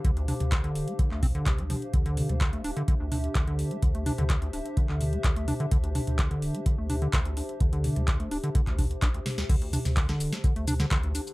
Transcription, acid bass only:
\new Staff \with { instrumentName = "Acid bass" } { \clef bass \time 4/4 \key d \minor \tempo 4 = 127 d16 d,16 d'16 r16 d16 d8 a16 d16 a16 c'16 d16 c16 g16 f16 r16 | d16 d8 a16 d16 a16 d'16 d16 d16 d,16 d'16 r16 d16 d8 a16 | d16 a16 d'16 d16 d16 d,16 d'16 r16 d16 d8 a16 d16 a16 d'16 d16 | d16 d,16 d'16 r16 d16 d8 a16 d16 a16 d'16 d16 d16 d,16 d'16 r16 |
d16 d8 a16 d16 a16 d'16 d16 d16 d,16 d'16 r16 d'16 d,16 r16 d,16 | d16 d,16 d'16 r16 d16 d8 a16 d16 a16 d'16 d16 d16 d,16 d'16 r16 | }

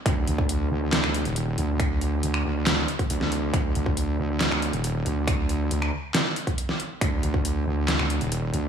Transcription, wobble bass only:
\new Staff \with { instrumentName = "Wobble bass" } { \clef bass \time 4/4 \key ees \lydian \tempo 4 = 138 d,8 d,4 d,8. d,8 ees,,8. d,8~ | d,4 d,8 d,4 r8 d,4 | d,8 d,4 d,8. d,8 ees,,8. d,8~ | d,4 d,8 r2 r8 |
d,8 d,4 d,8. d,8 ees,,8. d,8 | }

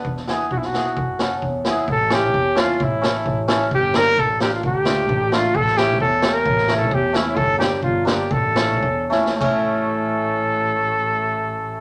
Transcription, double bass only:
\new Staff \with { instrumentName = "Double bass" } { \clef bass \time 2/4 \tempo 4 = 131 e,4 b,,8 r8 | fis,4 e,8 r8 | a,,4 e,4 | a,,4 a,,4 |
g,,4 a,,4 | d,4 a,,4 | a,,4 e,4 | a,,4 e,4 |
g,,4 g,,4 | a,,4 e,4 | a,,2~ | a,,2 | }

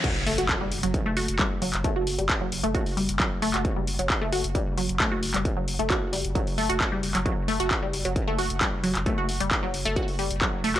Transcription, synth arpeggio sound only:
\new Staff \with { instrumentName = "Synth arpeggio sound" } { \clef bass \time 4/4 \key fis \phrygian \tempo 4 = 133 fis16 r16 a16 fis'16 r16 g16 r16 fis16 r16 a16 fis'16 r16 g16 r16 fis16 r16 | a16 fis'16 r16 g16 r16 fis16 r16 a16 fis'16 r16 g16 r16 fis16 r16 a16 fis'16 | r16 g16 r16 fis16 r16 a16 fis'16 r16 g16 r16 fis16 r16 a16 fis'16 r16 g16 | r16 fis16 r16 a16 fis'16 r16 g16 r16 fis16 r16 a16 fis'16 r16 g16 r16 fis16 |
fis16 r16 a16 fis'16 r16 g16 r16 fis16 r16 a16 fis'16 r16 g16 r16 fis16 r16 | a16 fis'16 r16 g16 r16 fis16 r16 a16 fis'16 r16 g16 r16 fis16 r16 a16 fis'16 | }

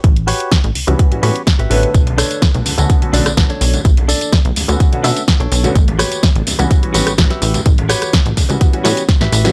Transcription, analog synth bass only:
\new Staff \with { instrumentName = "Analog synth bass" } { \clef bass \time 4/4 \key a \mixolydian \tempo 4 = 126 a,,8 r8. a,,16 cis,16 cis,16 r16 a,16 a,16 r8 a,,16 a,,16 r16 | b,,8 r8. b,,16 d,16 d,16 r16 b,,16 b,,16 b,,16 b,,16 r16 b,,16 r16 | b,,8 r8. b,,16 d,16 d,16 r16 b,16 b,16 r8 b,,16 b,,16 r16 | a,,8 r8. a,,16 cis,16 cis,16 r16 a,,16 a,,16 a,,16 a,,16 r16 a,,16 r16 |
a,,8 r8. a,,16 cis,16 cis,16 r16 a,16 a,16 r8 a,,16 a,,16 r16 | }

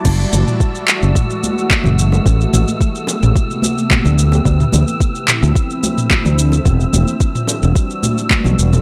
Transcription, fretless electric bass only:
\new Staff \with { instrumentName = "Fretless electric bass" } { \clef bass \time 4/4 \key fis \phrygian \tempo 4 = 109 fis,,16 r16 fis,,16 r4 fis,,16 r4 r16 fis,,8 r16 | a,,16 r16 a,,16 r4 a,,16 r4 r16 d,8 r16 | d,16 r16 d,16 r4 d,16 r4 r16 d,8 r16 | e,,16 r16 e,,16 r4 e,,16 r4 r16 b,,16 e,,16 r16 | }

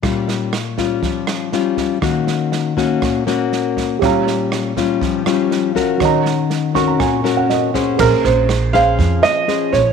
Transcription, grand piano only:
\new Staff \with { instrumentName = "Grand piano" } { \time 4/4 \key bes \minor \tempo 4 = 121 << { r1 | r1 | r1 | r4. des'''16 bes''16 aes''8. ges''16 ees''4 |
r1 | } \\ { r1 | r1 | <g' des'' f'' bes''>1 | <ges' des'' ees'' bes''>1 |
<aes' c'' bes''>1 | } >> }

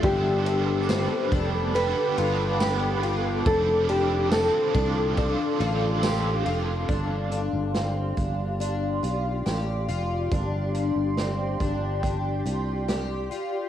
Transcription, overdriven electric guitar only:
\new Staff \with { instrumentName = "Overdriven electric guitar" } { \time 4/4 \key g \mixolydian \tempo 4 = 70 <g b d' a'>2 <g b d' a'>8 <b d' a'>4. | <f c' d' a'>4 <f c' d' a'>4 <f c' d' a'>8 <c' d' a'>4. | r1 | r1 | }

